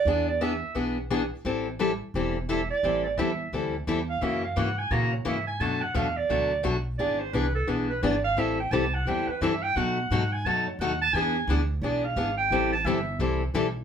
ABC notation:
X:1
M:4/4
L:1/16
Q:"Swing" 1/4=173
K:Ephr
V:1 name="Clarinet"
d2 d2 e4 z8 | z12 e2 d2- | d2 d2 e4 z6 f2 | e2 f2 ^f2 ^g2 ^a2 ^c2 e2 g2 |
a2 ^f2 =f2 d6 z4 | d2 c2 B2 A2 ^G2 B2 d2 f2 | e2 g2 a2 ^f2 g2 B2 e2 g2 | ^f6 ^g2 a2 ^c2 f2 a2 |
^g4 z4 d2 f4 =g2- | g2 a2 e4 z8 |]
V:2 name="Steel-string acoustic guitar"
[E,B,D^G]2 z2 [E,B,DG] z3 [E,B,DG]2 z2 [E,B,DG] z3 | [E,G,CEA]2 z2 [E,G,CEA] z3 [E,G,CEA]2 z2 [E,G,CEA] z3 | [E,G,CEA]2 z2 [E,G,CEA] z3 [E,G,CEA]2 z2 [E,G,CEA] z3 | [^C,E,^A,^C^F]2 z2 [C,E,A,CF] z3 [C,E,A,CF]2 z2 [C,E,A,CF] z3 |
[B,,^F,A,D^F]2 z2 [B,,F,A,DF] z3 [B,,F,A,DF]2 z2 [B,,F,A,DF] z3 | [E,B,D^G]2 z2 [E,B,DG] z3 [E,B,DG]2 z2 [E,B,DG] z3 | [E,G,CEA]2 z2 [E,G,CEA] z3 [E,G,CEA]2 z2 [E,G,CEA] z3 | [B,,^F,A,^D^F]2 z2 [B,,F,A,DF] z3 [B,,F,A,DF]2 z2 [B,,F,A,DF] z3 |
[E,B,D^G]2 z2 [E,B,DG] z3 [E,B,DG]2 z2 [E,B,DG] z3 | [E,G,CEA]2 z2 [E,G,CEA] z3 [E,G,CEA]2 z2 [E,G,CEA] z3 |]
V:3 name="Upright bass" clef=bass
E,,8 B,,,8 | A,,,8 E,,,8 | A,,,4 E,,4 D,,4 E,,4 | ^F,,4 ^G,,4 ^A,,4 G,,4 |
^F,,4 E,,4 D,,4 B,,,4 | ^G,,,4 C,,4 B,,,4 G,,,4 | A,,,4 C,,4 E,,2 z2 G,,4 | B,,4 ^G,,4 ^F,,4 ^D,,4 |
E,,4 D,,4 B,,,4 ^G,,,4 | A,,,4 G,,,4 C,,4 B,,,4 |]